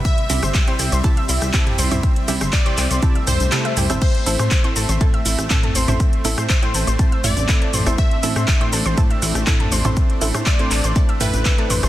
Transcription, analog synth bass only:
\new Staff \with { instrumentName = "Analog synth bass" } { \clef bass \time 4/4 \key a \minor \tempo 4 = 121 r8 c,16 g,,16 r8 c,16 c,16 r8 c,16 c,16 r8 c,16 c,16 | r8 c,16 g,,16 r8 c,16 c,16 r8 c,16 c,16 r8 c,16 g,,16 | r8 a,,16 a,16 r8 a,,16 a,,16 r8 a,,16 a,,16 r8 a,,16 a,,16 | r8 a,,16 a,16 r8 a,,16 a,,16 r8 a,,16 a,,16 r8 a,,16 a,,16 |
r8 a,,16 a,16 r8 a,,16 a,,16 r8 a,,16 a,,16 r8 a,,16 a,,16 | r8 a,,16 a,16 r8 a,,16 a,,16 r8 a,,16 a,,16 r8 a,,16 a,,16 | }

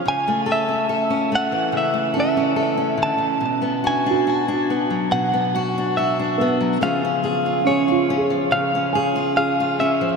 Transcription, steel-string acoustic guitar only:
\new Staff \with { instrumentName = "Steel-string acoustic guitar" } { \time 4/4 \key b \dorian \tempo 4 = 71 << { r16 a16 a'16 cis'16 a'16 cis'16 a8. a16 a'16 cis'16 a'16 cis'8. | r16 b16 fis'16 d'16 fis'16 d'16 b8. b16 fis'16 d'16 fis'16 d'16 b8 | <eis cis' eis' gis'>16 cis'16 gis'16 eis'16 gis'16 eis'16 cis'8. cis'16 gis'16 eis'16 gis'16 eis'16 cis'8 | } \\ { cis4.~ cis16 e16 cis4. d16 cis16 | b,4.~ b,16 fis16 b,4.~ b,16 fis16 | cis4.~ cis16 eis16 cis4.~ cis16 eis16 | } >> }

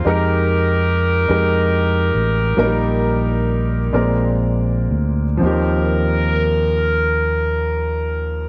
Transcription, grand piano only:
\new Staff \with { instrumentName = "Grand piano" } { \time 6/8 \key ees \major \tempo 4. = 43 <aes ees' g' bes'>4. <aes ees' g' bes'>4. | <bes, ges g bes ees' bes'>4. <bes, aes c' bes' d''>4. | <ees, f c' ees' g'>2. | }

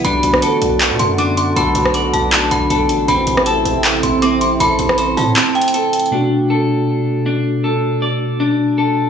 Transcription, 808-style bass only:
\new Staff \with { instrumentName = "808-style bass" } { \clef bass \time 4/4 \key b \phrygian \tempo 4 = 158 b,,8 b,,8 r8 b,,8. b,16 fis,4. | b,,8 b,,4 b,,4 b,,8 b,,8 a,,8 | a,,8 a,,4 a,,4 a,,4. | a,,8 a,,4 a,8 r2 |
r1 | r1 | }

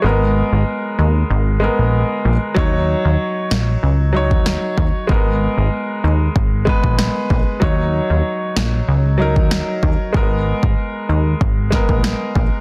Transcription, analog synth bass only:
\new Staff \with { instrumentName = "Analog synth bass" } { \clef bass \time 4/4 \key aes \dorian \tempo 4 = 95 aes,,8. aes,,16 r8 ees,8 aes,,8. bes,,8 r16 bes,,16 r16 | ees,8. ees,16 r8 bes,,8 des,8. ees,8 r16 ees,16 r16 | aes,,8. aes,,16 r8 ees,8 aes,,8. bes,,8 r16 bes,,16 r16 | ees,8. ees,16 r8 bes,,8 des,8. ees,8 r16 ees,16 r16 |
aes,,8. aes,,16 r8 ees,8 aes,,8. bes,,8 r16 bes,,16 r16 | }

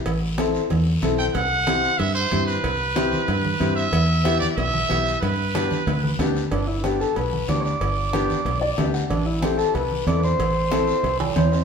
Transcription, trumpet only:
\new Staff \with { instrumentName = "Trumpet" } { \time 4/4 \key g \major \tempo 4 = 186 r2. r8 g''8 | fis''2 e''8 c''4 b'8~ | b'2.~ b'8 e''8~ | e''4. d''8 e''2 |
b'2. r4 | r1 | r1 | r1 |
r1 | }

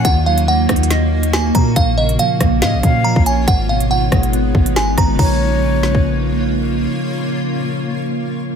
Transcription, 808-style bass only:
\new Staff \with { instrumentName = "808-style bass" } { \clef bass \time 4/4 \key bes \phrygian \tempo 4 = 140 ees,4. ees,2 bes,8 | bes,,4 r8 bes,,8 bes,16 bes,,16 bes,8. bes,,8. | aes,,4. aes,,4 aes,,4 aes,,8 | bes,,1 |
r1 | }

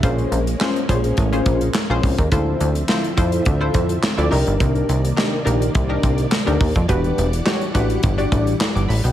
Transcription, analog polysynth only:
\new Staff \with { instrumentName = "Analog polysynth" } { \time 4/4 \key c \dorian \tempo 4 = 105 << { e''16 r2. r8. | r1 | r1 | r2. r16 d'''16 b''16 g''16 | } \\ { <des' f' aes' c''>8 r8 <des' f' aes' c''>16 r16 <des' f' aes' c''>8 r16 <des' f' aes' c''>8 r8 <des' f' aes' c''>8 r16 | <e' f' a' c''>8 r8 <e' f' a' c''>16 r16 <e' f' a' c''>8 r16 <e' f' a' c''>8 r8 <e' f' a' d''>16 <d' ees' g' bes'>8~ | <d' ees' g' bes'>8. r16 <d' ees' g' bes'>16 r16 <d' ees' g' bes'>8 r16 <d' ees' g' bes'>8 r8 <d' ees' g' bes'>8 r16 | <d' fis' g' b'>8 r8 <d' fis' g' cis''>16 r16 <d' fis' g' b'>8 r16 <d' fis' g' d''>8 r4 r16 | } >> }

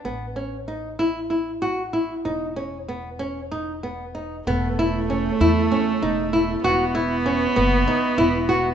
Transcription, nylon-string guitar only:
\new Staff \with { instrumentName = "Nylon-string guitar" } { \time 7/8 \key a \lydian \tempo 4 = 96 b8 cis'8 dis'8 e'8 e'8 fis'8 e'8 | dis'8 cis'8 b8 cis'8 dis'8 b8 dis'8 | b8 e'8 cis'8 e'8 cis'8 dis'8 e'8 | fis'8 e'8 cis'8 b8 dis'8 e'8 fis'8 | }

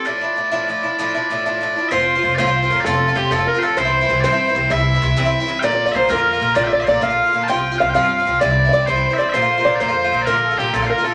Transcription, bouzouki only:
\new Staff \with { instrumentName = "Bouzouki" } { \time 12/8 \key d \minor \tempo 4. = 129 <a, f d' e'>8 <f d' e'>8 <a, f d' e'>8 <a, f d' e'>8 <a, f d' e'>8 <f d' e'>8 <a, f d' e'>8 <f d' e'>8 <a, f d' e'>8 <a, f d' e'>8 <a, f d' e'>8 <f d' e'>8 | \key f \major <a, f c' f'>16 <f c' f'>8 <f c' f'>16 <a, f c' f'>8 <a, f c' f'>16 <f c' f'>8 <f c' f'>16 <a, f c' f'>8 <a, f c' f'>16 <f c' f'>8 <f c' f'>16 <a, f c' f'>8 <a, f c' f'>16 <f c' f'>8 <f c' f'>16 <a, f c' f'>8 | <g, e c' e'>16 <e c' e'>8 <e c' e'>16 <g, e c' e'>8 <g, e c' e'>16 <e c' e'>8 <e c' e'>16 <g, e c' e'>8 <g, e c' e'>16 <e c' e'>8 <e c' e'>16 <g, e c' e'>8 <g, e c' e'>16 <e c' e'>8 <e c' e'>16 <g, e c' e'>8 | <bes, d bes f'>16 <d bes f'>8 <d bes f'>16 <bes, d bes f'>8 <bes, d bes f'>16 <d bes f'>8 <d bes f'>16 <bes, d bes f'>8 <bes, d bes f'>16 <d bes f'>8 <d bes f'>16 <bes, d bes f'>8 <bes, d bes f'>16 <d bes f'>8 <d bes f'>16 <bes, d bes f'>8 |
<g, f c' f'>16 <f c' f'>8 <f c' f'>16 <g, f c' f'>8 <g, f c' f'>16 <f c' f'>8 <f c' f'>16 <g, f c' f'>8 <g, e c' e'>16 <e c' e'>8 <e c' e'>16 <g, e c' e'>8 <g, e c' e'>16 <e c' e'>8 <e c' e'>16 <g, e c' e'>8 | <bes, d bes f'>16 <d bes f'>8 <d bes f'>16 <bes, d bes f'>8 <bes, d bes f'>16 <d bes f'>8 <d bes f'>16 <bes, d bes f'>8 <bes, d bes f'>16 <d bes f'>8 <d bes f'>16 <bes, d bes f'>8 <bes, d bes f'>16 <d bes f'>8 <d bes f'>16 <bes, d bes f'>8 | }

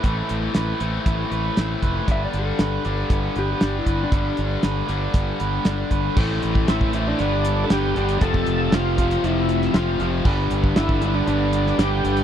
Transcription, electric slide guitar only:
\new Staff \with { instrumentName = "Electric slide guitar" } { \time 4/4 \key g \mixolydian \tempo 4 = 118 r1 | e''16 d''16 a'2 g'16 g'8 e'8 d'16 | d'8 r2. r8 | r1 |
r1 | r1 | }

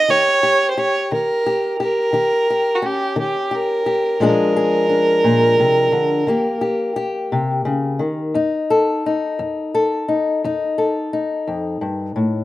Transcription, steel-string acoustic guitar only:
\new Staff \with { instrumentName = "Steel-string acoustic guitar" } { \time 12/8 \key ees \major \tempo 4. = 58 << { g'8 g'8 g'4 g'8 g'8 g'8 g'8 des'4 g'8 g'8 | <f aes d' aes'>8 aes'8 d'2 <bes g'>8 g'8 g'2 | ees'8 a'8 ees'4 a'8 ees'8 ees'8 a'8 ees'2 | } \\ { ees4 r8 ees4 r8 ees4 r8 ees4 r8 | bes,4 r8 bes,8 c8 d8 ees4 r8 c8 des8 ees8 | f,4 r8 f,4 r8 f,4 r8 f,8 g,8 a,8 | } >> }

